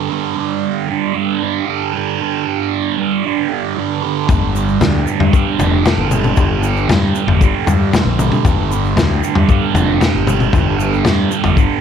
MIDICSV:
0, 0, Header, 1, 4, 480
1, 0, Start_track
1, 0, Tempo, 520833
1, 97, Time_signature, 4, 2, 24, 8
1, 10882, End_track
2, 0, Start_track
2, 0, Title_t, "Distorted electric guitar"
2, 0, Program_c, 0, 30
2, 0, Note_on_c, 0, 55, 64
2, 84, Note_on_c, 0, 43, 92
2, 97, Note_on_c, 0, 50, 94
2, 109, Note_off_c, 0, 55, 0
2, 113, Note_on_c, 0, 55, 112
2, 327, Note_off_c, 0, 55, 0
2, 330, Note_on_c, 0, 55, 63
2, 351, Note_off_c, 0, 50, 0
2, 362, Note_on_c, 0, 50, 49
2, 804, Note_off_c, 0, 55, 0
2, 808, Note_on_c, 0, 55, 67
2, 827, Note_off_c, 0, 50, 0
2, 838, Note_on_c, 0, 50, 54
2, 1046, Note_off_c, 0, 43, 0
2, 1049, Note_on_c, 0, 43, 94
2, 1057, Note_off_c, 0, 50, 0
2, 1068, Note_on_c, 0, 50, 80
2, 1080, Note_off_c, 0, 55, 0
2, 1083, Note_on_c, 0, 55, 93
2, 1288, Note_off_c, 0, 55, 0
2, 1291, Note_on_c, 0, 55, 63
2, 1313, Note_off_c, 0, 50, 0
2, 1324, Note_on_c, 0, 50, 50
2, 1527, Note_off_c, 0, 43, 0
2, 1531, Note_on_c, 0, 43, 62
2, 1538, Note_off_c, 0, 50, 0
2, 1549, Note_on_c, 0, 50, 64
2, 1559, Note_off_c, 0, 55, 0
2, 1562, Note_on_c, 0, 55, 72
2, 1775, Note_off_c, 0, 55, 0
2, 1779, Note_on_c, 0, 55, 68
2, 1800, Note_off_c, 0, 50, 0
2, 1811, Note_on_c, 0, 50, 59
2, 2021, Note_off_c, 0, 43, 0
2, 2024, Note_on_c, 0, 43, 89
2, 2032, Note_off_c, 0, 50, 0
2, 2043, Note_on_c, 0, 50, 91
2, 2052, Note_off_c, 0, 55, 0
2, 2056, Note_on_c, 0, 55, 86
2, 2255, Note_off_c, 0, 55, 0
2, 2259, Note_on_c, 0, 55, 64
2, 2280, Note_off_c, 0, 50, 0
2, 2291, Note_on_c, 0, 50, 50
2, 2741, Note_off_c, 0, 55, 0
2, 2745, Note_on_c, 0, 55, 61
2, 2761, Note_off_c, 0, 50, 0
2, 2773, Note_on_c, 0, 50, 50
2, 2981, Note_off_c, 0, 43, 0
2, 2985, Note_on_c, 0, 43, 74
2, 2990, Note_off_c, 0, 50, 0
2, 3001, Note_on_c, 0, 50, 95
2, 3011, Note_off_c, 0, 55, 0
2, 3015, Note_on_c, 0, 55, 105
2, 3219, Note_off_c, 0, 55, 0
2, 3223, Note_on_c, 0, 55, 65
2, 3245, Note_off_c, 0, 50, 0
2, 3256, Note_on_c, 0, 50, 52
2, 3457, Note_off_c, 0, 43, 0
2, 3461, Note_on_c, 0, 43, 61
2, 3470, Note_off_c, 0, 50, 0
2, 3481, Note_on_c, 0, 50, 64
2, 3489, Note_off_c, 0, 55, 0
2, 3492, Note_on_c, 0, 55, 67
2, 3696, Note_off_c, 0, 55, 0
2, 3699, Note_on_c, 0, 55, 68
2, 3718, Note_off_c, 0, 50, 0
2, 3730, Note_on_c, 0, 50, 55
2, 3941, Note_off_c, 0, 43, 0
2, 3944, Note_on_c, 0, 43, 91
2, 3949, Note_off_c, 0, 50, 0
2, 3960, Note_on_c, 0, 50, 88
2, 3970, Note_off_c, 0, 55, 0
2, 3974, Note_on_c, 0, 55, 86
2, 4186, Note_off_c, 0, 55, 0
2, 4190, Note_on_c, 0, 55, 70
2, 4208, Note_off_c, 0, 50, 0
2, 4219, Note_on_c, 0, 50, 46
2, 4665, Note_off_c, 0, 55, 0
2, 4668, Note_on_c, 0, 55, 73
2, 4687, Note_off_c, 0, 50, 0
2, 4698, Note_on_c, 0, 50, 56
2, 4898, Note_off_c, 0, 43, 0
2, 4902, Note_on_c, 0, 43, 73
2, 4906, Note_off_c, 0, 50, 0
2, 4917, Note_on_c, 0, 50, 94
2, 4929, Note_off_c, 0, 55, 0
2, 4933, Note_on_c, 0, 55, 105
2, 5146, Note_off_c, 0, 55, 0
2, 5150, Note_on_c, 0, 55, 63
2, 5169, Note_off_c, 0, 50, 0
2, 5180, Note_on_c, 0, 50, 46
2, 5379, Note_off_c, 0, 43, 0
2, 5383, Note_on_c, 0, 43, 60
2, 5389, Note_off_c, 0, 50, 0
2, 5400, Note_on_c, 0, 50, 69
2, 5411, Note_off_c, 0, 55, 0
2, 5415, Note_on_c, 0, 55, 64
2, 5622, Note_off_c, 0, 55, 0
2, 5626, Note_on_c, 0, 55, 70
2, 5646, Note_off_c, 0, 50, 0
2, 5657, Note_on_c, 0, 50, 59
2, 5864, Note_off_c, 0, 43, 0
2, 5868, Note_on_c, 0, 43, 85
2, 5872, Note_off_c, 0, 50, 0
2, 5883, Note_on_c, 0, 50, 91
2, 5894, Note_off_c, 0, 55, 0
2, 5898, Note_on_c, 0, 55, 99
2, 6102, Note_off_c, 0, 55, 0
2, 6106, Note_on_c, 0, 55, 74
2, 6128, Note_off_c, 0, 50, 0
2, 6139, Note_on_c, 0, 50, 58
2, 6578, Note_off_c, 0, 55, 0
2, 6582, Note_on_c, 0, 55, 63
2, 6603, Note_off_c, 0, 50, 0
2, 6615, Note_on_c, 0, 50, 55
2, 6815, Note_off_c, 0, 43, 0
2, 6819, Note_on_c, 0, 43, 92
2, 6828, Note_off_c, 0, 50, 0
2, 6839, Note_on_c, 0, 50, 92
2, 6850, Note_off_c, 0, 55, 0
2, 6854, Note_on_c, 0, 55, 101
2, 7061, Note_off_c, 0, 55, 0
2, 7065, Note_on_c, 0, 55, 65
2, 7084, Note_off_c, 0, 50, 0
2, 7095, Note_on_c, 0, 50, 51
2, 7296, Note_off_c, 0, 43, 0
2, 7300, Note_on_c, 0, 43, 60
2, 7304, Note_off_c, 0, 50, 0
2, 7315, Note_on_c, 0, 50, 72
2, 7329, Note_off_c, 0, 55, 0
2, 7333, Note_on_c, 0, 55, 72
2, 7538, Note_off_c, 0, 55, 0
2, 7541, Note_on_c, 0, 55, 80
2, 7562, Note_off_c, 0, 50, 0
2, 7573, Note_on_c, 0, 50, 55
2, 7778, Note_off_c, 0, 43, 0
2, 7782, Note_on_c, 0, 43, 84
2, 7790, Note_off_c, 0, 50, 0
2, 7801, Note_on_c, 0, 50, 100
2, 7811, Note_off_c, 0, 55, 0
2, 7815, Note_on_c, 0, 55, 104
2, 8021, Note_off_c, 0, 55, 0
2, 8025, Note_on_c, 0, 55, 75
2, 8045, Note_off_c, 0, 50, 0
2, 8056, Note_on_c, 0, 50, 57
2, 8501, Note_off_c, 0, 55, 0
2, 8505, Note_on_c, 0, 55, 63
2, 8524, Note_off_c, 0, 50, 0
2, 8535, Note_on_c, 0, 50, 58
2, 8734, Note_off_c, 0, 43, 0
2, 8738, Note_on_c, 0, 43, 86
2, 8744, Note_off_c, 0, 50, 0
2, 8755, Note_on_c, 0, 50, 94
2, 8764, Note_off_c, 0, 55, 0
2, 8767, Note_on_c, 0, 55, 111
2, 8978, Note_off_c, 0, 55, 0
2, 8982, Note_on_c, 0, 55, 59
2, 9002, Note_off_c, 0, 50, 0
2, 9013, Note_on_c, 0, 50, 53
2, 9220, Note_off_c, 0, 43, 0
2, 9224, Note_on_c, 0, 43, 61
2, 9228, Note_off_c, 0, 50, 0
2, 9239, Note_on_c, 0, 50, 68
2, 9248, Note_off_c, 0, 55, 0
2, 9252, Note_on_c, 0, 55, 72
2, 9461, Note_off_c, 0, 55, 0
2, 9464, Note_on_c, 0, 55, 65
2, 9486, Note_off_c, 0, 50, 0
2, 9497, Note_on_c, 0, 50, 57
2, 9698, Note_off_c, 0, 43, 0
2, 9702, Note_on_c, 0, 43, 95
2, 9706, Note_off_c, 0, 50, 0
2, 9717, Note_on_c, 0, 50, 90
2, 9721, Note_off_c, 0, 55, 0
2, 9732, Note_on_c, 0, 55, 108
2, 9921, Note_off_c, 0, 55, 0
2, 9932, Note_on_c, 0, 55, 68
2, 9957, Note_off_c, 0, 50, 0
2, 9968, Note_on_c, 0, 50, 50
2, 10182, Note_off_c, 0, 43, 0
2, 10403, Note_off_c, 0, 55, 0
2, 10414, Note_on_c, 0, 55, 67
2, 10434, Note_off_c, 0, 50, 0
2, 10446, Note_on_c, 0, 50, 52
2, 10650, Note_on_c, 0, 43, 83
2, 10656, Note_off_c, 0, 50, 0
2, 10668, Note_on_c, 0, 50, 86
2, 10672, Note_off_c, 0, 55, 0
2, 10683, Note_on_c, 0, 55, 99
2, 10882, Note_off_c, 0, 43, 0
2, 10882, Note_off_c, 0, 50, 0
2, 10882, Note_off_c, 0, 55, 0
2, 10882, End_track
3, 0, Start_track
3, 0, Title_t, "Fingered electric bass"
3, 0, Program_c, 1, 33
3, 3953, Note_on_c, 1, 31, 86
3, 4395, Note_off_c, 1, 31, 0
3, 4427, Note_on_c, 1, 38, 83
3, 4644, Note_off_c, 1, 38, 0
3, 4790, Note_on_c, 1, 43, 85
3, 5006, Note_off_c, 1, 43, 0
3, 5147, Note_on_c, 1, 29, 101
3, 5364, Note_off_c, 1, 29, 0
3, 5508, Note_on_c, 1, 31, 89
3, 5833, Note_off_c, 1, 31, 0
3, 5871, Note_on_c, 1, 31, 88
3, 6314, Note_off_c, 1, 31, 0
3, 6346, Note_on_c, 1, 43, 96
3, 6564, Note_off_c, 1, 43, 0
3, 6698, Note_on_c, 1, 31, 79
3, 6920, Note_off_c, 1, 31, 0
3, 7066, Note_on_c, 1, 43, 96
3, 7283, Note_off_c, 1, 43, 0
3, 7421, Note_on_c, 1, 34, 85
3, 7640, Note_off_c, 1, 34, 0
3, 7784, Note_on_c, 1, 31, 106
3, 8229, Note_off_c, 1, 31, 0
3, 8261, Note_on_c, 1, 38, 85
3, 8480, Note_off_c, 1, 38, 0
3, 8624, Note_on_c, 1, 43, 90
3, 8841, Note_off_c, 1, 43, 0
3, 8976, Note_on_c, 1, 29, 99
3, 9196, Note_off_c, 1, 29, 0
3, 9349, Note_on_c, 1, 31, 82
3, 9671, Note_off_c, 1, 31, 0
3, 9705, Note_on_c, 1, 31, 101
3, 10146, Note_off_c, 1, 31, 0
3, 10182, Note_on_c, 1, 43, 93
3, 10398, Note_off_c, 1, 43, 0
3, 10542, Note_on_c, 1, 31, 76
3, 10758, Note_off_c, 1, 31, 0
3, 10882, End_track
4, 0, Start_track
4, 0, Title_t, "Drums"
4, 3952, Note_on_c, 9, 36, 100
4, 3952, Note_on_c, 9, 43, 83
4, 3957, Note_on_c, 9, 82, 57
4, 4044, Note_off_c, 9, 36, 0
4, 4044, Note_off_c, 9, 43, 0
4, 4049, Note_off_c, 9, 82, 0
4, 4199, Note_on_c, 9, 82, 88
4, 4291, Note_off_c, 9, 82, 0
4, 4316, Note_on_c, 9, 82, 24
4, 4408, Note_off_c, 9, 82, 0
4, 4433, Note_on_c, 9, 43, 70
4, 4433, Note_on_c, 9, 47, 79
4, 4433, Note_on_c, 9, 82, 64
4, 4444, Note_on_c, 9, 38, 73
4, 4525, Note_off_c, 9, 43, 0
4, 4525, Note_off_c, 9, 47, 0
4, 4525, Note_off_c, 9, 82, 0
4, 4536, Note_off_c, 9, 38, 0
4, 4674, Note_on_c, 9, 82, 73
4, 4766, Note_off_c, 9, 82, 0
4, 4795, Note_on_c, 9, 43, 74
4, 4887, Note_off_c, 9, 43, 0
4, 4915, Note_on_c, 9, 36, 123
4, 4917, Note_on_c, 9, 82, 65
4, 5007, Note_off_c, 9, 36, 0
4, 5009, Note_off_c, 9, 82, 0
4, 5157, Note_on_c, 9, 82, 81
4, 5158, Note_on_c, 9, 43, 76
4, 5249, Note_off_c, 9, 82, 0
4, 5250, Note_off_c, 9, 43, 0
4, 5395, Note_on_c, 9, 82, 64
4, 5397, Note_on_c, 9, 43, 83
4, 5397, Note_on_c, 9, 47, 68
4, 5409, Note_on_c, 9, 38, 75
4, 5487, Note_off_c, 9, 82, 0
4, 5490, Note_off_c, 9, 43, 0
4, 5490, Note_off_c, 9, 47, 0
4, 5501, Note_off_c, 9, 38, 0
4, 5633, Note_on_c, 9, 47, 72
4, 5633, Note_on_c, 9, 82, 88
4, 5725, Note_off_c, 9, 47, 0
4, 5726, Note_off_c, 9, 82, 0
4, 5753, Note_on_c, 9, 47, 72
4, 5755, Note_on_c, 9, 82, 28
4, 5846, Note_off_c, 9, 47, 0
4, 5847, Note_off_c, 9, 82, 0
4, 5867, Note_on_c, 9, 82, 65
4, 5873, Note_on_c, 9, 36, 92
4, 5875, Note_on_c, 9, 43, 74
4, 5959, Note_off_c, 9, 82, 0
4, 5965, Note_off_c, 9, 36, 0
4, 5967, Note_off_c, 9, 43, 0
4, 6113, Note_on_c, 9, 82, 95
4, 6205, Note_off_c, 9, 82, 0
4, 6237, Note_on_c, 9, 82, 22
4, 6330, Note_off_c, 9, 82, 0
4, 6354, Note_on_c, 9, 43, 87
4, 6354, Note_on_c, 9, 47, 71
4, 6358, Note_on_c, 9, 82, 69
4, 6365, Note_on_c, 9, 38, 73
4, 6446, Note_off_c, 9, 43, 0
4, 6446, Note_off_c, 9, 47, 0
4, 6450, Note_off_c, 9, 82, 0
4, 6457, Note_off_c, 9, 38, 0
4, 6592, Note_on_c, 9, 82, 74
4, 6684, Note_off_c, 9, 82, 0
4, 6709, Note_on_c, 9, 43, 78
4, 6802, Note_off_c, 9, 43, 0
4, 6830, Note_on_c, 9, 36, 116
4, 6833, Note_on_c, 9, 82, 67
4, 6922, Note_off_c, 9, 36, 0
4, 6925, Note_off_c, 9, 82, 0
4, 7071, Note_on_c, 9, 43, 80
4, 7074, Note_on_c, 9, 82, 90
4, 7163, Note_off_c, 9, 43, 0
4, 7166, Note_off_c, 9, 82, 0
4, 7312, Note_on_c, 9, 43, 81
4, 7312, Note_on_c, 9, 47, 74
4, 7314, Note_on_c, 9, 82, 76
4, 7323, Note_on_c, 9, 38, 76
4, 7404, Note_off_c, 9, 43, 0
4, 7404, Note_off_c, 9, 47, 0
4, 7406, Note_off_c, 9, 82, 0
4, 7415, Note_off_c, 9, 38, 0
4, 7548, Note_on_c, 9, 47, 71
4, 7552, Note_on_c, 9, 82, 89
4, 7640, Note_off_c, 9, 47, 0
4, 7644, Note_off_c, 9, 82, 0
4, 7666, Note_on_c, 9, 47, 69
4, 7677, Note_on_c, 9, 82, 30
4, 7758, Note_off_c, 9, 47, 0
4, 7769, Note_off_c, 9, 82, 0
4, 7786, Note_on_c, 9, 36, 88
4, 7786, Note_on_c, 9, 43, 79
4, 7790, Note_on_c, 9, 82, 80
4, 7878, Note_off_c, 9, 36, 0
4, 7878, Note_off_c, 9, 43, 0
4, 7882, Note_off_c, 9, 82, 0
4, 8034, Note_on_c, 9, 82, 105
4, 8126, Note_off_c, 9, 82, 0
4, 8154, Note_on_c, 9, 82, 23
4, 8246, Note_off_c, 9, 82, 0
4, 8266, Note_on_c, 9, 43, 79
4, 8266, Note_on_c, 9, 47, 65
4, 8273, Note_on_c, 9, 82, 73
4, 8278, Note_on_c, 9, 38, 76
4, 8359, Note_off_c, 9, 43, 0
4, 8359, Note_off_c, 9, 47, 0
4, 8365, Note_off_c, 9, 82, 0
4, 8370, Note_off_c, 9, 38, 0
4, 8511, Note_on_c, 9, 82, 84
4, 8603, Note_off_c, 9, 82, 0
4, 8621, Note_on_c, 9, 43, 89
4, 8713, Note_off_c, 9, 43, 0
4, 8744, Note_on_c, 9, 36, 117
4, 8744, Note_on_c, 9, 82, 55
4, 8836, Note_off_c, 9, 36, 0
4, 8836, Note_off_c, 9, 82, 0
4, 8984, Note_on_c, 9, 43, 85
4, 8993, Note_on_c, 9, 82, 74
4, 9076, Note_off_c, 9, 43, 0
4, 9085, Note_off_c, 9, 82, 0
4, 9227, Note_on_c, 9, 43, 79
4, 9227, Note_on_c, 9, 47, 68
4, 9231, Note_on_c, 9, 82, 61
4, 9238, Note_on_c, 9, 38, 65
4, 9319, Note_off_c, 9, 43, 0
4, 9319, Note_off_c, 9, 47, 0
4, 9323, Note_off_c, 9, 82, 0
4, 9330, Note_off_c, 9, 38, 0
4, 9467, Note_on_c, 9, 47, 74
4, 9477, Note_on_c, 9, 82, 78
4, 9559, Note_off_c, 9, 47, 0
4, 9569, Note_off_c, 9, 82, 0
4, 9587, Note_on_c, 9, 47, 64
4, 9592, Note_on_c, 9, 82, 24
4, 9679, Note_off_c, 9, 47, 0
4, 9684, Note_off_c, 9, 82, 0
4, 9705, Note_on_c, 9, 36, 108
4, 9705, Note_on_c, 9, 43, 79
4, 9718, Note_on_c, 9, 82, 61
4, 9797, Note_off_c, 9, 36, 0
4, 9797, Note_off_c, 9, 43, 0
4, 9810, Note_off_c, 9, 82, 0
4, 9953, Note_on_c, 9, 82, 83
4, 10045, Note_off_c, 9, 82, 0
4, 10076, Note_on_c, 9, 82, 21
4, 10169, Note_off_c, 9, 82, 0
4, 10181, Note_on_c, 9, 43, 83
4, 10181, Note_on_c, 9, 47, 70
4, 10191, Note_on_c, 9, 82, 65
4, 10192, Note_on_c, 9, 38, 70
4, 10273, Note_off_c, 9, 43, 0
4, 10273, Note_off_c, 9, 47, 0
4, 10283, Note_off_c, 9, 82, 0
4, 10284, Note_off_c, 9, 38, 0
4, 10427, Note_on_c, 9, 82, 66
4, 10519, Note_off_c, 9, 82, 0
4, 10541, Note_on_c, 9, 43, 77
4, 10547, Note_on_c, 9, 82, 21
4, 10633, Note_off_c, 9, 43, 0
4, 10639, Note_off_c, 9, 82, 0
4, 10662, Note_on_c, 9, 36, 104
4, 10667, Note_on_c, 9, 82, 56
4, 10754, Note_off_c, 9, 36, 0
4, 10759, Note_off_c, 9, 82, 0
4, 10882, End_track
0, 0, End_of_file